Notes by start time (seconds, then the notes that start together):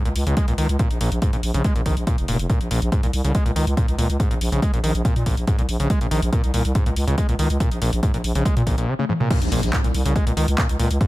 0.05 C#2 A#2, closed hi-hat
0.16 C#2, open hi-hat
0.27 C#2 C#3, closed hi-hat
0.37 G#3, kick, closed hi-hat
0.48 C#2 A#2, closed hi-hat
0.58 C#2 D#3, open hi-hat
0.69 C#2, closed hi-hat
0.79 A#2, kick, closed hi-hat
0.90 A#1, closed hi-hat
1.01 A#1 A#2, open hi-hat
1.12 A#1, closed hi-hat
1.22 G#2, kick, closed hi-hat
1.33 A#1 A#2, closed hi-hat
1.43 A#1, open hi-hat
1.54 A#1 C#3, closed hi-hat
1.64 G#3, kick, closed hi-hat
1.75 A#1 A#2, closed hi-hat
1.86 A#1 D#3, kick, open hi-hat
1.97 A#1, closed hi-hat
2.07 A#2, kick, closed hi-hat
2.18 F1, closed hi-hat
2.28 F1 A#2, open hi-hat
2.39 F1, closed hi-hat
2.50 A#2, kick, closed hi-hat
2.61 A#1, closed hi-hat
2.71 A#1 A#2, open hi-hat
2.82 A#1, closed hi-hat
2.92 G#2, kick, closed hi-hat
3.03 C2 A#2, closed hi-hat
3.13 C2, open hi-hat
3.25 C2 C#3, closed hi-hat
3.35 G#3, kick, closed hi-hat
3.46 C#2 A#2, closed hi-hat
3.56 C#2 D#3, open hi-hat
3.67 C#2, closed hi-hat
3.77 A#2, kick, closed hi-hat
3.88 C#2, closed hi-hat
3.98 C#2 A#2, open hi-hat
4.09 C#2, closed hi-hat
4.20 G#2, kick, closed hi-hat
4.31 A#1 A#2, closed hi-hat
4.41 A#1, open hi-hat
4.52 A#1 C#3, closed hi-hat
4.62 G#3, kick, closed hi-hat
4.73 A#1 A#2, closed hi-hat
4.84 A#1 D#3, open hi-hat
4.95 A#1, closed hi-hat
5.05 A#2, kick, closed hi-hat
5.16 A#2, closed hi-hat
5.26 A#1 A#2, kick, open hi-hat
5.37 A#1, closed hi-hat
5.47 G#2, kick, closed hi-hat
5.58 C2 A#2, closed hi-hat
5.69 A#1, open hi-hat
5.80 A#1 C#3, closed hi-hat
5.90 G#3, kick, closed hi-hat
6.01 A#1 A#2, closed hi-hat
6.11 A#1 D#3, open hi-hat
6.22 A#1, closed hi-hat
6.33 A#2, kick, closed hi-hat
6.44 C2, closed hi-hat
6.54 C2 A#2, open hi-hat
6.65 C2, closed hi-hat
6.75 G#2, kick, closed hi-hat
6.86 C#2 A#2, closed hi-hat
6.96 C#2, open hi-hat
7.07 C#2 C#3, closed hi-hat
7.18 G#3, kick, closed hi-hat
7.29 C#2 A#2, closed hi-hat
7.39 C#2 D#3, open hi-hat
7.50 C#2, closed hi-hat
7.60 A#2, kick, closed hi-hat
7.71 A#1, closed hi-hat
7.82 A#1 A#2, open hi-hat
7.93 A#1, closed hi-hat
8.03 G#2, kick, closed hi-hat
8.14 A#1 A#2, closed hi-hat
8.24 A#1, open hi-hat
8.35 A#1 C#3, closed hi-hat
8.45 G#3, kick, closed hi-hat
8.57 A#2, closed hi-hat
8.67 A#1 A#2, kick, open hi-hat
8.78 A#1 A#2, closed hi-hat
8.88 C#3
8.99 C#3, high tom
9.09 G#2, mid tom
9.20 A#2, mid tom
9.31 A#2, kick, closed hi-hat, crash, impact
9.42 A#1, closed hi-hat
9.52 A#1 A#2, open hi-hat
9.63 A#1, closed hi-hat
9.73 G#2, kick, clap, closed hi-hat
9.84 C2 A#2, closed hi-hat
9.94 C2, open hi-hat
10.05 C2 C#3, closed hi-hat
10.16 G#3, kick, closed hi-hat
10.27 C#2 A#2, closed hi-hat
10.37 C#2 D#3, open hi-hat
10.48 C#2, closed hi-hat
10.58 A#2, kick, clap, closed hi-hat
10.69 C#2, closed hi-hat
10.79 C#2 A#2, open hi-hat
10.91 C#2, closed hi-hat
11.01 G#2, kick, closed hi-hat